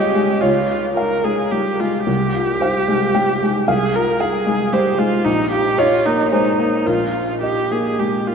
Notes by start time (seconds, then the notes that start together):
Already playing: C#2 G3 G#3 F4 G4 C#5 D#5 F5
0.15 G#3
0.42 C#2 F4 C#5
0.70 F4
0.97 A#4 F5
1.24 G#3 G#4
1.51 G3 G4
1.80 G#3 F4
2.07 C2 G4
2.35 F4
2.61 C5 F5
2.88 G#3
3.15 G3 G5
3.42 G#3
3.68 C2 G#4 F5
3.94 F4 A#4
4.20 G#4 F5
4.46 G#3
4.73 G3 G4 C5
4.98 G#3 F4
5.25 A#1 D#4
5.51 F4 G4
5.78 F4 C#5 D#5
6.06 A#3 D#4
6.32 G#3 D#4 C5
6.59 A#3
6.86 A#1 F4 A#4
7.15 F4
7.42 G4 D#5
7.71 A#3 G#4
7.99 G#3 G4
8.27 A#3 F4